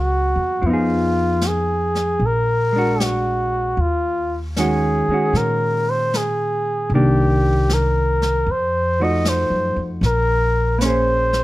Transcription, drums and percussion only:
0.64 brush sweep
1.41 snare, hi-hat pedal
1.95 snare
2.21 brush sweep
3.00 snare, hi-hat pedal
3.78 brush sweep
4.56 snare, hi-hat pedal
5.35 brush sweep, snare
6.14 snare, hi-hat pedal
6.91 brush sweep
7.69 snare, hi-hat pedal
8.22 snare
8.48 brush sweep
9.25 snare, hi-hat pedal
10.03 brush sweep, snare
10.81 snare, hi-hat pedal
11.33 snare

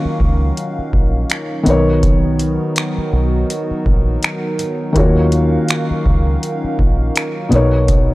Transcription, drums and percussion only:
0.20 kick
0.57 closed hi-hat
0.93 kick
1.30 finger snap, closed hi-hat
1.66 closed hi-hat
2.03 kick, closed hi-hat
2.39 closed hi-hat
2.76 finger snap, closed hi-hat
3.50 closed hi-hat
3.86 kick
4.23 finger snap, closed hi-hat
4.59 closed hi-hat
4.96 kick, closed hi-hat
5.32 closed hi-hat
5.68 finger snap, closed hi-hat
6.06 kick
6.43 closed hi-hat
6.79 kick
7.15 finger snap, closed hi-hat
7.52 closed hi-hat
7.88 kick, closed hi-hat

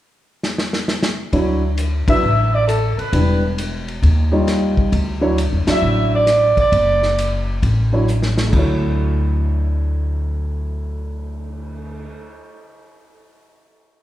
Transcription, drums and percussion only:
0.43 snare
0.58 snare
0.73 snare
0.88 snare
1.03 snare
1.33 kick, ride
1.78 hi-hat pedal, ride
2.08 kick, ride
2.68 cross-stick, hi-hat pedal, ride
2.99 ride
3.13 kick, ride
3.58 hi-hat pedal, ride
3.88 ride
4.03 kick, ride
4.47 cross-stick, snare, hi-hat pedal, ride
4.77 kick
4.92 kick, ride
5.38 hi-hat pedal, ride
5.67 snare, ride
6.27 cross-stick, snare, hi-hat pedal, ride
6.57 kick, ride
6.72 kick, ride
7.03 snare
7.18 hi-hat pedal, ride
7.63 kick, ride
8.08 hi-hat pedal
8.23 snare
8.38 snare
8.53 kick, crash
8.83 cymbal swell

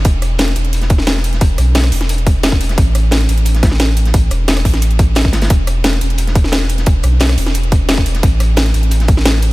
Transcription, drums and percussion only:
0.05 kick, closed hi-hat
0.22 cross-stick, closed hi-hat
0.39 snare, closed hi-hat
0.48 closed hi-hat
0.55 closed hi-hat
0.65 closed hi-hat
0.73 closed hi-hat
0.81 snare, closed hi-hat
0.90 kick, closed hi-hat
0.98 snare
1.07 snare, closed hi-hat
1.17 snare
1.24 closed hi-hat
1.33 snare, closed hi-hat
1.41 kick, closed hi-hat
1.58 cross-stick, closed hi-hat
1.75 snare, closed hi-hat
1.84 cross-stick, closed hi-hat
1.92 closed hi-hat, open hi-hat
2.01 snare, closed hi-hat
2.09 closed hi-hat
2.18 closed hi-hat
2.27 kick, closed hi-hat
2.43 snare, closed hi-hat
2.52 kick
2.61 closed hi-hat
2.69 snare, closed hi-hat
2.78 kick, closed hi-hat
2.95 cross-stick, closed hi-hat
3.11 snare, closed hi-hat
3.20 closed hi-hat
3.29 closed hi-hat
3.38 closed hi-hat
3.45 closed hi-hat
3.55 snare, closed hi-hat
3.63 kick, snare, closed hi-hat
3.71 snare
3.79 snare, closed hi-hat
3.97 closed hi-hat
4.05 snare, closed hi-hat
4.14 kick, closed hi-hat
4.31 cross-stick, closed hi-hat
4.48 snare, closed hi-hat
4.57 cross-stick, closed hi-hat
4.65 kick, closed hi-hat, open hi-hat
4.74 snare, closed hi-hat
4.82 closed hi-hat
4.91 closed hi-hat
4.99 kick, closed hi-hat
5.15 snare, closed hi-hat
5.25 kick
5.33 snare, closed hi-hat
5.42 snare, closed hi-hat
5.50 kick, closed hi-hat
5.67 cross-stick, closed hi-hat
5.84 snare, closed hi-hat
5.93 closed hi-hat
6.01 closed hi-hat
6.10 closed hi-hat
6.18 closed hi-hat
6.27 snare, closed hi-hat
6.35 kick, closed hi-hat
6.44 snare
6.52 snare, closed hi-hat
6.61 snare
6.69 closed hi-hat
6.78 snare, closed hi-hat
6.86 kick, closed hi-hat
7.03 cross-stick, closed hi-hat
7.20 snare, closed hi-hat
7.29 cross-stick, closed hi-hat
7.38 closed hi-hat, open hi-hat
7.46 snare, closed hi-hat
7.54 closed hi-hat
7.63 closed hi-hat
7.72 kick, closed hi-hat
7.89 snare, closed hi-hat
7.98 kick
8.06 closed hi-hat
8.15 snare, closed hi-hat
8.23 kick, closed hi-hat
8.40 cross-stick, closed hi-hat
8.57 snare, closed hi-hat
8.66 closed hi-hat
8.74 closed hi-hat
8.83 closed hi-hat
8.91 closed hi-hat
9.00 snare, closed hi-hat
9.08 kick, closed hi-hat
9.17 snare
9.25 snare, closed hi-hat
9.34 snare
9.42 closed hi-hat

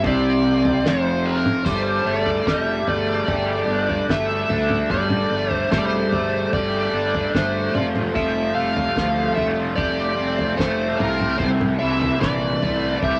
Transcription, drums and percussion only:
0.04 kick, floor tom
0.65 floor tom
0.86 snare
1.46 mid tom
1.66 kick, floor tom, crash
2.26 floor tom
2.47 kick, snare
2.88 floor tom
3.28 kick, floor tom
3.89 floor tom
4.09 kick, snare
4.50 mid tom
4.70 mid tom
4.90 kick, floor tom
5.10 mid tom
5.51 floor tom
5.71 kick, snare, mid tom
6.12 floor tom
6.53 kick, floor tom
7.15 floor tom
7.35 kick, snare
7.75 mid tom
7.96 mid tom
8.16 kick, floor tom
8.77 floor tom
8.97 kick, snare
9.37 floor tom
9.78 kick, floor tom
10.39 floor tom
10.59 kick, snare
11.00 mid tom
11.20 mid tom
11.40 kick, floor tom
11.61 mid tom
12.01 floor tom
12.21 kick, snare, mid tom
12.63 floor tom
13.02 kick, floor tom

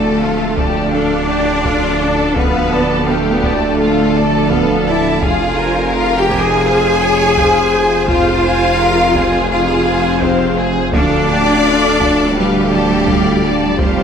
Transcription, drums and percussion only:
0.58 taiko
1.65 taiko
2.36 taiko
3.43 taiko
4.51 taiko
5.23 taiko
6.30 taiko
7.37 taiko
8.08 taiko
9.15 taiko
10.22 taiko
10.93 taiko
12.00 taiko
13.08 taiko
13.79 taiko

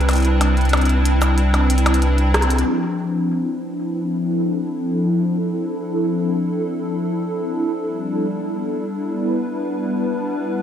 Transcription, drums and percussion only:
0.01 closed hi-hat
0.09 closed hi-hat, percussion blips
0.11 closed hi-hat
0.13 closed hi-hat
0.15 closed hi-hat
0.18 closed hi-hat
0.20 closed hi-hat
0.22 closed hi-hat
0.25 closed hi-hat
0.41 closed hi-hat, percussion blips
0.57 closed hi-hat
0.61 closed hi-hat
0.65 closed hi-hat
0.69 closed hi-hat
0.73 closed hi-hat, percussion blips
0.77 closed hi-hat
0.81 closed hi-hat
0.85 closed hi-hat
0.89 closed hi-hat
1.06 closed hi-hat
1.22 closed hi-hat, percussion blips, shaker
1.38 closed hi-hat
1.54 closed hi-hat, percussion blips
1.70 closed hi-hat
1.78 closed hi-hat
1.86 closed hi-hat, percussion blips
1.94 closed hi-hat
2.02 closed hi-hat
2.18 closed hi-hat
2.34 cross-stick, closed hi-hat, percussion blips
2.42 closed hi-hat
2.50 closed hi-hat
2.59 closed hi-hat

